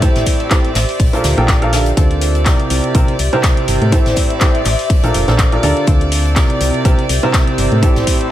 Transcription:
Already playing: G4 C5 D5 E5
0.02 A2 C4 E4 G4 A4 C5, kick, closed hi-hat
0.15 A1, snare, closed hi-hat
0.26 kick, closed hi-hat, open hi-hat
0.40 closed hi-hat
0.50 A2 C4 E4 G4 A4 C5, kick, snare, clap, closed hi-hat
0.64 closed hi-hat
0.75 A1, snare, clap, closed hi-hat, open hi-hat
0.89 open hi-hat
1.00 A#1 F4, kick, closed hi-hat, open hi-hat
1.13 A#2 D4 F4 A4 A#4 C5, closed hi-hat
1.24 D2 D5, snare, closed hi-hat, open hi-hat
1.38 A#1 A#2 D4 F4 A4 A#4 G5, closed hi-hat
1.48 kick, snare, clap, closed hi-hat
1.62 A#2 D4 F4 A4 A#4 F5, closed hi-hat
1.73 D3 D4 F4 A4 A#4 F5, snare, closed hi-hat, open hi-hat
1.86 closed hi-hat
1.97 D2 D3 C4 D4 F4 G4 A4 C5 D5, kick, closed hi-hat
2.11 closed hi-hat
2.21 C5, closed hi-hat, open hi-hat
2.31 E5, closed hi-hat
2.35 closed hi-hat
2.45 C3 C4 E4 G4 A#4 D5, kick, snare, clap, closed hi-hat
2.60 closed hi-hat
2.70 C2, closed hi-hat, open hi-hat
2.84 closed hi-hat
2.94 C2 C3 C4 E4 G4 A#4 C5, kick, closed hi-hat
3.08 closed hi-hat
3.19 C2, closed hi-hat, open hi-hat
3.33 C3 C4 E4 G4 A#4 C5, closed hi-hat
3.43 kick, snare, clap, closed hi-hat
3.57 closed hi-hat
3.68 G1, closed hi-hat, open hi-hat
3.82 A2, closed hi-hat
3.92 A2 C4 E4 G4 A4 C5, kick, closed hi-hat
4.06 A1, snare, closed hi-hat
4.16 kick, closed hi-hat, open hi-hat
4.30 closed hi-hat
4.41 A2 C4 E4 G4 A4 C5, kick, snare, clap, closed hi-hat
4.55 closed hi-hat
4.65 A1, clap, closed hi-hat, open hi-hat
4.79 open hi-hat
4.90 F4, kick, closed hi-hat, open hi-hat
5.04 A#1 A#2 D4 F4 A4 A#4 C5, closed hi-hat
5.14 F1, closed hi-hat, open hi-hat
5.28 A#1 A#2 D4 F4 A4 A#4 C5, snare, closed hi-hat
5.38 kick, snare, clap, closed hi-hat
5.52 A#2 D4 F4 A4 A#4 D5, closed hi-hat
5.63 D2 D3 D4 F4 A4 A#4 D5, closed hi-hat, open hi-hat
5.77 closed hi-hat
5.87 D2 D3 C4 D4 F4 G4 A4 C5, kick, closed hi-hat
5.99 C5, closed hi-hat
6.12 closed hi-hat, open hi-hat
6.22 E5, closed hi-hat
6.26 closed hi-hat
6.36 C3 C4 E4 G4 A#4 D5, kick, snare, clap, closed hi-hat
6.50 closed hi-hat
6.61 C2, closed hi-hat, open hi-hat
6.74 closed hi-hat
6.85 C2 C3 C4 E4 G4 A#4 C5, kick, closed hi-hat
6.99 closed hi-hat
7.09 C2, closed hi-hat, open hi-hat
7.23 C3 C4 E4 G4 A#4 C5, closed hi-hat
7.33 kick, snare, clap, closed hi-hat
7.47 closed hi-hat
7.58 G1, closed hi-hat, open hi-hat
7.72 A2, closed hi-hat
7.83 A2 C4 E4 G4 A4 C5, kick, closed hi-hat
7.96 A1, snare, closed hi-hat
8.07 kick, closed hi-hat, open hi-hat
8.21 closed hi-hat

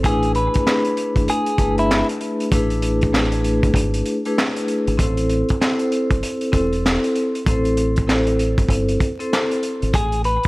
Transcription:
0.03 A1 A3 D4 E4 G#4 B4, kick, closed hi-hat
0.23 closed hi-hat
0.35 B4, closed hi-hat
0.54 kick, closed hi-hat
0.66 A3 D4 E4 G#4 B4, snare, clap
0.85 closed hi-hat
0.97 closed hi-hat
1.16 G#1, kick, closed hi-hat
1.28 G#4, closed hi-hat
1.46 closed hi-hat
1.58 G1 A3 D4 E4 G#4 B4, kick, closed hi-hat
1.78 E4, closed hi-hat
1.91 snare, clap
2.09 closed hi-hat
2.21 closed hi-hat
2.40 closed hi-hat
2.52 A1 A3 D4 E4 G#4 B4, kick, closed hi-hat
2.70 closed hi-hat
2.82 closed hi-hat
3.01 kick, closed hi-hat
3.12 A3 D4 E4 G#4 B4, snare, clap
3.32 closed hi-hat
3.44 closed hi-hat
3.63 G#1, kick, closed hi-hat
3.74 G#1, kick, closed hi-hat
3.94 closed hi-hat
4.05 closed hi-hat
4.25 A3 D4 E4 G#4 B4, closed hi-hat
4.38 snare, clap
4.56 closed hi-hat
4.68 closed hi-hat
4.87 G#1, closed hi-hat
4.97 A1 C4 E4 A4 C5, kick, closed hi-hat
5.17 closed hi-hat
5.29 closed hi-hat
5.49 kick, closed hi-hat
5.61 C4 E4 A4 C5, snare, clap
5.79 closed hi-hat
5.92 closed hi-hat
6.11 G1, kick, closed hi-hat
6.23 closed hi-hat
6.41 closed hi-hat
6.52 E1 C4 E4 A4 C5, kick, closed hi-hat
6.73 closed hi-hat
6.86 snare, clap
7.04 closed hi-hat
7.16 closed hi-hat
7.35 closed hi-hat
7.46 A1 C4 E4 A4 C5, kick, closed hi-hat
7.65 closed hi-hat
7.77 closed hi-hat
7.96 kick, closed hi-hat
8.07 C4 E4 A4 C5, snare, clap
8.27 closed hi-hat
8.39 closed hi-hat
8.58 G1, kick, closed hi-hat
8.69 G1, kick, closed hi-hat
8.89 closed hi-hat
9.00 kick, closed hi-hat
9.19 C4 E4 A4 C5, closed hi-hat
9.33 snare, clap
9.51 closed hi-hat
9.63 closed hi-hat
9.82 G#1, closed hi-hat
9.94 A1 G#4, kick, closed hi-hat
10.12 closed hi-hat
10.24 B4, closed hi-hat
10.44 closed hi-hat

